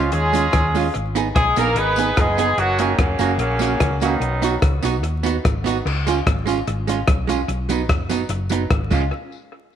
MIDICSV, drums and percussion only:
0, 0, Header, 1, 2, 480
1, 0, Start_track
1, 0, Tempo, 408441
1, 1108, Time_signature, 4, 2, 24, 8
1, 11465, End_track
2, 0, Start_track
2, 0, Title_t, "Drums"
2, 140, Note_on_c, 9, 42, 80
2, 257, Note_off_c, 9, 42, 0
2, 393, Note_on_c, 9, 54, 76
2, 409, Note_on_c, 9, 42, 101
2, 511, Note_off_c, 9, 54, 0
2, 526, Note_off_c, 9, 42, 0
2, 623, Note_on_c, 9, 37, 123
2, 626, Note_on_c, 9, 42, 75
2, 630, Note_on_c, 9, 36, 109
2, 741, Note_off_c, 9, 37, 0
2, 744, Note_off_c, 9, 42, 0
2, 748, Note_off_c, 9, 36, 0
2, 882, Note_on_c, 9, 46, 56
2, 887, Note_on_c, 9, 54, 67
2, 999, Note_off_c, 9, 46, 0
2, 1005, Note_off_c, 9, 54, 0
2, 1112, Note_on_c, 9, 42, 71
2, 1230, Note_off_c, 9, 42, 0
2, 1357, Note_on_c, 9, 54, 83
2, 1366, Note_on_c, 9, 42, 89
2, 1474, Note_off_c, 9, 54, 0
2, 1483, Note_off_c, 9, 42, 0
2, 1594, Note_on_c, 9, 36, 109
2, 1595, Note_on_c, 9, 42, 80
2, 1596, Note_on_c, 9, 37, 115
2, 1711, Note_off_c, 9, 36, 0
2, 1712, Note_off_c, 9, 42, 0
2, 1714, Note_off_c, 9, 37, 0
2, 1836, Note_on_c, 9, 54, 88
2, 1847, Note_on_c, 9, 42, 86
2, 1954, Note_off_c, 9, 54, 0
2, 1965, Note_off_c, 9, 42, 0
2, 2066, Note_on_c, 9, 42, 85
2, 2183, Note_off_c, 9, 42, 0
2, 2303, Note_on_c, 9, 54, 84
2, 2332, Note_on_c, 9, 42, 92
2, 2421, Note_off_c, 9, 54, 0
2, 2450, Note_off_c, 9, 42, 0
2, 2551, Note_on_c, 9, 37, 119
2, 2554, Note_on_c, 9, 36, 99
2, 2554, Note_on_c, 9, 42, 70
2, 2669, Note_off_c, 9, 37, 0
2, 2671, Note_off_c, 9, 36, 0
2, 2672, Note_off_c, 9, 42, 0
2, 2797, Note_on_c, 9, 54, 62
2, 2805, Note_on_c, 9, 42, 93
2, 2914, Note_off_c, 9, 54, 0
2, 2923, Note_off_c, 9, 42, 0
2, 3032, Note_on_c, 9, 42, 70
2, 3150, Note_off_c, 9, 42, 0
2, 3272, Note_on_c, 9, 54, 76
2, 3277, Note_on_c, 9, 42, 91
2, 3390, Note_off_c, 9, 54, 0
2, 3395, Note_off_c, 9, 42, 0
2, 3509, Note_on_c, 9, 42, 75
2, 3510, Note_on_c, 9, 36, 114
2, 3510, Note_on_c, 9, 37, 118
2, 3626, Note_off_c, 9, 42, 0
2, 3627, Note_off_c, 9, 36, 0
2, 3627, Note_off_c, 9, 37, 0
2, 3745, Note_on_c, 9, 54, 92
2, 3770, Note_on_c, 9, 42, 84
2, 3863, Note_off_c, 9, 54, 0
2, 3888, Note_off_c, 9, 42, 0
2, 3983, Note_on_c, 9, 42, 82
2, 4101, Note_off_c, 9, 42, 0
2, 4220, Note_on_c, 9, 54, 81
2, 4250, Note_on_c, 9, 42, 92
2, 4337, Note_off_c, 9, 54, 0
2, 4368, Note_off_c, 9, 42, 0
2, 4469, Note_on_c, 9, 37, 119
2, 4472, Note_on_c, 9, 36, 101
2, 4472, Note_on_c, 9, 42, 69
2, 4587, Note_off_c, 9, 37, 0
2, 4589, Note_off_c, 9, 36, 0
2, 4590, Note_off_c, 9, 42, 0
2, 4716, Note_on_c, 9, 54, 69
2, 4726, Note_on_c, 9, 42, 94
2, 4834, Note_off_c, 9, 54, 0
2, 4844, Note_off_c, 9, 42, 0
2, 4955, Note_on_c, 9, 42, 66
2, 5072, Note_off_c, 9, 42, 0
2, 5198, Note_on_c, 9, 54, 75
2, 5206, Note_on_c, 9, 42, 94
2, 5315, Note_off_c, 9, 54, 0
2, 5324, Note_off_c, 9, 42, 0
2, 5432, Note_on_c, 9, 42, 68
2, 5433, Note_on_c, 9, 37, 108
2, 5434, Note_on_c, 9, 36, 118
2, 5549, Note_off_c, 9, 42, 0
2, 5550, Note_off_c, 9, 37, 0
2, 5551, Note_off_c, 9, 36, 0
2, 5671, Note_on_c, 9, 54, 92
2, 5699, Note_on_c, 9, 42, 83
2, 5788, Note_off_c, 9, 54, 0
2, 5816, Note_off_c, 9, 42, 0
2, 5919, Note_on_c, 9, 42, 75
2, 6037, Note_off_c, 9, 42, 0
2, 6151, Note_on_c, 9, 54, 83
2, 6186, Note_on_c, 9, 42, 92
2, 6269, Note_off_c, 9, 54, 0
2, 6303, Note_off_c, 9, 42, 0
2, 6404, Note_on_c, 9, 36, 109
2, 6405, Note_on_c, 9, 37, 107
2, 6408, Note_on_c, 9, 42, 69
2, 6521, Note_off_c, 9, 36, 0
2, 6522, Note_off_c, 9, 37, 0
2, 6525, Note_off_c, 9, 42, 0
2, 6647, Note_on_c, 9, 54, 70
2, 6665, Note_on_c, 9, 42, 87
2, 6764, Note_off_c, 9, 54, 0
2, 6783, Note_off_c, 9, 42, 0
2, 6894, Note_on_c, 9, 49, 95
2, 7011, Note_off_c, 9, 49, 0
2, 7132, Note_on_c, 9, 54, 78
2, 7143, Note_on_c, 9, 42, 82
2, 7249, Note_off_c, 9, 54, 0
2, 7260, Note_off_c, 9, 42, 0
2, 7365, Note_on_c, 9, 36, 109
2, 7366, Note_on_c, 9, 42, 74
2, 7367, Note_on_c, 9, 37, 115
2, 7482, Note_off_c, 9, 36, 0
2, 7484, Note_off_c, 9, 42, 0
2, 7485, Note_off_c, 9, 37, 0
2, 7601, Note_on_c, 9, 54, 86
2, 7625, Note_on_c, 9, 42, 89
2, 7719, Note_off_c, 9, 54, 0
2, 7742, Note_off_c, 9, 42, 0
2, 7845, Note_on_c, 9, 42, 76
2, 7962, Note_off_c, 9, 42, 0
2, 8083, Note_on_c, 9, 54, 75
2, 8101, Note_on_c, 9, 42, 99
2, 8201, Note_off_c, 9, 54, 0
2, 8219, Note_off_c, 9, 42, 0
2, 8315, Note_on_c, 9, 37, 122
2, 8318, Note_on_c, 9, 42, 68
2, 8322, Note_on_c, 9, 36, 112
2, 8432, Note_off_c, 9, 37, 0
2, 8435, Note_off_c, 9, 42, 0
2, 8439, Note_off_c, 9, 36, 0
2, 8566, Note_on_c, 9, 54, 68
2, 8575, Note_on_c, 9, 42, 87
2, 8684, Note_off_c, 9, 54, 0
2, 8692, Note_off_c, 9, 42, 0
2, 8801, Note_on_c, 9, 42, 68
2, 8919, Note_off_c, 9, 42, 0
2, 9042, Note_on_c, 9, 54, 85
2, 9046, Note_on_c, 9, 42, 90
2, 9159, Note_off_c, 9, 54, 0
2, 9164, Note_off_c, 9, 42, 0
2, 9274, Note_on_c, 9, 36, 109
2, 9276, Note_on_c, 9, 42, 73
2, 9278, Note_on_c, 9, 37, 121
2, 9392, Note_off_c, 9, 36, 0
2, 9394, Note_off_c, 9, 42, 0
2, 9395, Note_off_c, 9, 37, 0
2, 9514, Note_on_c, 9, 54, 90
2, 9532, Note_on_c, 9, 42, 84
2, 9632, Note_off_c, 9, 54, 0
2, 9649, Note_off_c, 9, 42, 0
2, 9743, Note_on_c, 9, 42, 82
2, 9861, Note_off_c, 9, 42, 0
2, 9983, Note_on_c, 9, 54, 83
2, 10011, Note_on_c, 9, 42, 100
2, 10101, Note_off_c, 9, 54, 0
2, 10129, Note_off_c, 9, 42, 0
2, 10230, Note_on_c, 9, 36, 117
2, 10231, Note_on_c, 9, 37, 115
2, 10233, Note_on_c, 9, 42, 70
2, 10348, Note_off_c, 9, 36, 0
2, 10348, Note_off_c, 9, 37, 0
2, 10351, Note_off_c, 9, 42, 0
2, 10474, Note_on_c, 9, 36, 91
2, 10477, Note_on_c, 9, 54, 78
2, 10483, Note_on_c, 9, 49, 79
2, 10592, Note_off_c, 9, 36, 0
2, 10594, Note_off_c, 9, 54, 0
2, 10600, Note_off_c, 9, 49, 0
2, 11465, End_track
0, 0, End_of_file